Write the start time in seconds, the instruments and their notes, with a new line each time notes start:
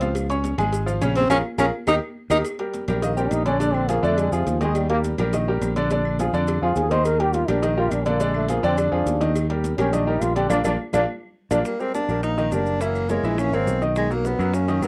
Already playing: fingered electric bass C#2, tenor saxophone C4
0.00 grand piano F3 F4 F5, cowbell, high conga, maracas
0.15 cowbell, high conga, claves, maracas
0.30 grand piano C#4 C#5 C#6, cowbell, high conga, maracas
0.44 cowbell, high conga, maracas
0.58 fingered electric bass G#1, grand piano G#3 G#4 G#5, cowbell, high conga, low conga, claves, maracas
0.73 cowbell, high conga, maracas
0.86 grand piano F3 F4 F5, high conga, maracas
1.01 fingered electric bass A#1, grand piano C#3 C#4 C#5, cowbell, high conga, claves, maracas
1.15 tenor saxophone C4, cowbell, high conga, maracas
1.29 fingered electric bass A#1, tenor saxophone C#4, grand piano F4 G#4 A#4, cowbell, high conga, claves, maracas
1.58 fingered electric bass A#1, tenor saxophone C#4, grand piano F4 G#4 A#4, cowbell, high conga, claves, maracas
1.87 fingered electric bass D#2, grand piano D#4 G4 A#4, tenor saxophone D#4, cowbell, high conga, claves, maracas
2.30 fingered electric bass D#2, grand piano D#4 G4 A#4, tenor saxophone D#4, cowbell, high conga, claves, maracas
2.45 cowbell, high conga, claves, maracas
2.59 grand piano G3 G4 A#4, cowbell, high conga
2.74 cowbell, high conga, maracas
2.88 fingered electric bass A#1, grand piano G3 G4 A#4, cowbell, high conga, low conga, claves, maracas
3.02 grand piano D#3 D#4 D#5, trombone A#3, cowbell, maracas
3.17 grand piano G3 G4 A#4, trombone C4, high conga, maracas
3.31 fingered electric bass A#1, trombone D#4, cowbell, high conga, claves, maracas
3.45 grand piano D3 D4 D5, trombone C#4, cowbell, high conga, maracas
3.60 grand piano D3 D4 D5, trombone D4, cowbell, high conga, maracas
3.74 trombone C4, high conga, claves
3.89 grand piano F3 F4 G#4, trombone A#3, cowbell, high conga, maracas
4.03 fingered electric bass F2, grand piano D3 D4 D5, trombone A3, high conga, maracas
4.17 trombone G#3, cowbell, high conga, claves, maracas
4.32 fingered electric bass F2, trombone C3, grand piano F3 F4 G#4, high conga, maracas
4.47 fingered electric bass D#2, trombone F3, cowbell, high conga, maracas
4.61 grand piano D#3 D#4 D#5, trombone G#3, cowbell, high conga, maracas
4.75 trombone G3, cowbell, high conga, claves, maracas
4.89 grand piano G3 G4 A#4, trombone A#3, cowbell
5.04 cowbell, high conga, maracas
5.18 fingered electric bass A#1, grand piano G3 G4 A#4, cowbell, high conga, low conga, claves, maracas
5.33 grand piano D#3 D#4 D#5, cowbell, high conga, low conga, maracas
5.48 grand piano G3 G4 A#4, high conga
5.61 fingered electric bass A#1, cowbell, high conga, claves, maracas
5.76 grand piano D3 D4 D5, cowbell, high conga, maracas
5.90 grand piano D3 D4 D5, cowbell, high conga, maracas
6.05 high conga, claves
6.19 grand piano F3 F4 G#4, cowbell, high conga, maracas
6.33 fingered electric bass F2, grand piano D3 D4 D5, high conga, maracas
6.47 cowbell, high conga, claves, maracas
6.62 fingered electric bass F2, grand piano F3 F4 G#4, trombone F4, high conga
6.76 fingered electric bass D#2, trombone G#4, cowbell, high conga, maracas
6.91 grand piano D#3 D#4 D#5, trombone C5, cowbell, high conga, maracas
7.05 trombone A#4, cowbell, high conga, claves, maracas
7.19 grand piano G3 G4 A#4, trombone G4, cowbell, high conga
7.33 trombone F4, cowbell, high conga, maracas
7.48 fingered electric bass A#1, grand piano G3 G4 A#4, trombone D4, cowbell, high conga, low conga, claves, maracas
7.63 grand piano D#3 D#4 D#5, trombone D#4, cowbell, maracas
7.77 grand piano G3 G4 A#4, trombone F4, high conga
7.91 fingered electric bass A#1, trombone D4, cowbell, high conga, claves, maracas
8.06 grand piano D3 D4 D5, trombone A#3, cowbell, high conga, maracas
8.20 grand piano D3 D4 D5, trombone G#3, cowbell, high conga, maracas
8.34 trombone A3, high conga, claves
8.48 grand piano F3 F4 G#4, trombone A#3, cowbell, high conga, maracas
8.63 fingered electric bass F2, grand piano D3 D4 D5, trombone C4, high conga, maracas
8.78 trombone D4, cowbell, claves, maracas
8.92 fingered electric bass F2, grand piano F3 F4 G#4, high conga
9.06 fingered electric bass D#2, cowbell, high conga, maracas
9.21 grand piano D#3 D#4 D#5, cowbell, high conga, maracas
9.35 cowbell, high conga, claves, maracas
9.49 grand piano G3 G4 A#4, cowbell, high conga
9.64 cowbell, high conga, maracas
9.78 fingered electric bass A#1, grand piano G3 G4 A#4, trombone C#4, cowbell, high conga, low conga, claves, maracas
9.93 grand piano D#3 D#4 D#5, trombone D4, cowbell, high conga, low conga, maracas
10.07 grand piano G3 G4 A#4, trombone D#4, high conga
10.21 fingered electric bass A#1, trombone F4, cowbell, high conga, claves, maracas
10.36 grand piano D3 D4 D5, trombone G4, cowbell, high conga, maracas
10.50 fingered electric bass A#1, grand piano A#3 D4 F4, trombone D4, cowbell, low conga, claves, maracas
10.64 fingered electric bass A#1, grand piano A#3 D4 F4, trombone D4, cowbell, low conga, claves, maracas
10.93 fingered electric bass A#1, grand piano A#3 D4 F4, trombone D4, cowbell, low conga, claves, maracas
11.51 fingered electric bass A#1, grand piano A#3 D4 F4, trombone D4, cowbell, low conga, claves, maracas
11.65 trombone G3, tenor saxophone A#3, high bongo, high conga, claves, maracas
11.80 grand piano G3 G4 A#4, trombone G#3, tenor saxophone C4, high bongo, high conga, maracas
11.94 trombone A#3, tenor saxophone D4, high bongo, high conga, maracas
12.09 fingered electric bass A#1, grand piano G3 G4 A#4, high bongo, high conga, claves, maracas
12.23 trombone A#3, tenor saxophone D#4, high bongo, high conga, maracas
12.38 grand piano D#3 D#4 D#5, high bongo, high conga, maracas
12.52 fingered electric bass F#1, grand piano G3 G4 A#4, trombone A#3, tenor saxophone D4, high bongo, low bongo, high conga, claves, maracas
12.66 maracas
12.81 grand piano E3 E4 E5, trombone F#3, tenor saxophone A#3, high bongo, high conga, maracas
12.95 high bongo, high conga, claves, maracas
13.09 trombone E3, tenor saxophone G#3, grand piano A#3 A#4 C#5, high bongo, high conga, maracas
13.23 fingered electric bass A#1, grand piano E3 E4 E5, high bongo, high conga, maracas
13.38 trombone A#3, tenor saxophone C#4, high bongo, high conga, claves, maracas
13.52 fingered electric bass G#1, trombone G#3, grand piano A#3 A#4 C#5, tenor saxophone C4, high bongo, high conga, maracas
13.67 fingered electric bass B1, high bongo, low bongo, high conga, maracas
13.82 grand piano D#3 D#4 D#5, maracas
13.96 trombone D#3, tenor saxophone G#3, high bongo, high conga, claves, maracas
14.10 grand piano F#3 F#4 A#4, trombone F#3, tenor saxophone A#3, high bongo, high conga, maracas
14.25 trombone F#3, tenor saxophone B3, high bongo, high conga, maracas
14.39 fingered electric bass F#2, grand piano F#3 F#4 A#4, high bongo, high conga, claves, maracas
14.54 trombone A#3, tenor saxophone C#4, high bongo, high conga, maracas
14.68 grand piano D#3 D#4 D#5, high bongo, high conga, maracas
14.81 fingered electric bass G2, trombone F#3, grand piano F#3 F#4 A#4, tenor saxophone B3, high bongo, low bongo, high conga, claves, maracas